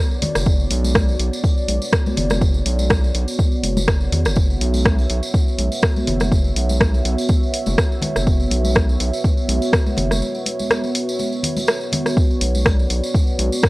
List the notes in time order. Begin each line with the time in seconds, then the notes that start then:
Already playing: B3 F#4 C#5 D5
0.11 tambourine
0.22 open hi-hat, muted conga, high conga, low conga
0.35 F#1, cross-stick, tambourine
0.46 kick, tambourine
0.60 tambourine
0.70 B1, open hi-hat, muted conga
0.84 tambourine, high conga
0.95 kick, cross-stick, tambourine, high conga
1.09 tambourine, muted conga
1.19 B1, open hi-hat
1.33 tambourine
1.44 kick, tambourine, muted conga
1.58 tambourine
1.68 B1, open hi-hat, high conga
1.82 tambourine, muted conga
1.93 kick, cross-stick, tambourine
2.06 tambourine, high conga
2.17 F#1, open hi-hat, muted conga, low conga
2.30 cross-stick, tambourine, high conga
2.41 kick, tambourine
2.54 tambourine
2.66 B1, open hi-hat, muted conga
2.79 tambourine, high conga
2.90 kick, cross-stick, tambourine, high conga
3.03 tambourine, muted conga
3.14 B1, open hi-hat
3.28 tambourine
3.39 kick, tambourine, muted conga, high conga
3.52 tambourine
3.63 F#1, open hi-hat, high conga
3.77 tambourine, muted conga, high conga
3.88 kick, cross-stick
4.00 tambourine
4.12 E2, open hi-hat, muted conga, high conga, low conga
4.25 F#1, cross-stick, tambourine
4.36 E5, kick, tambourine
4.50 tambourine
4.61 B1, open hi-hat, muted conga
4.74 tambourine, high conga
4.85 kick, cross-stick, high conga
4.98 tambourine, muted conga
5.10 B1, open hi-hat
5.23 tambourine
5.34 kick, tambourine, muted conga
5.48 tambourine
5.58 B1, open hi-hat, high conga
5.72 tambourine, muted conga
5.82 kick, cross-stick, tambourine
5.96 tambourine, high conga
6.07 F#1, open hi-hat, muted conga, low conga
6.20 cross-stick, tambourine, high conga
6.32 kick, tambourine
6.44 tambourine
6.56 B1, open hi-hat, muted conga
6.69 tambourine, high conga
6.80 kick, cross-stick, high conga
6.94 tambourine, muted conga
7.05 B1, open hi-hat
7.18 tambourine
7.29 kick, tambourine, muted conga, high conga
7.43 tambourine
7.54 open hi-hat
7.66 F#1, tambourine, muted conga, high conga
7.78 kick, cross-stick, tambourine
7.92 tambourine
8.02 open hi-hat, muted conga, high conga, low conga
8.16 F#1, cross-stick, tambourine
8.27 kick, tambourine
8.40 tambourine
8.51 B1, open hi-hat, muted conga
8.64 tambourine, high conga
8.75 kick, cross-stick, tambourine, high conga
8.88 tambourine, muted conga
9.00 B1, open hi-hat
9.13 tambourine
9.24 kick, tambourine, muted conga
9.37 tambourine
9.49 B1, open hi-hat, high conga
9.62 tambourine, muted conga
9.73 kick, cross-stick, tambourine
9.87 tambourine, high conga
9.97 F#1, open hi-hat, muted conga, low conga
10.11 cross-stick, tambourine, high conga
10.22 tambourine
10.35 tambourine
10.46 open hi-hat, muted conga
10.59 tambourine, high conga
10.70 cross-stick, tambourine, high conga
10.84 tambourine, muted conga
10.95 open hi-hat
11.09 tambourine
11.19 tambourine, muted conga, high conga
11.33 tambourine
11.43 open hi-hat, low conga
11.57 tambourine, muted conga, high conga
11.68 cross-stick, tambourine
11.81 tambourine
11.92 open hi-hat, muted conga, high conga, low conga
12.06 cross-stick, tambourine
12.17 D5, kick, tambourine
12.31 tambourine
12.41 B1, open hi-hat, muted conga
12.55 tambourine, high conga
12.65 kick, cross-stick, tambourine, high conga
12.79 tambourine, muted conga
12.90 B1, open hi-hat
13.04 tambourine
13.14 kick, tambourine, muted conga
13.27 tambourine
13.38 B1, open hi-hat, high conga
13.52 tambourine, muted conga
13.63 kick, cross-stick, tambourine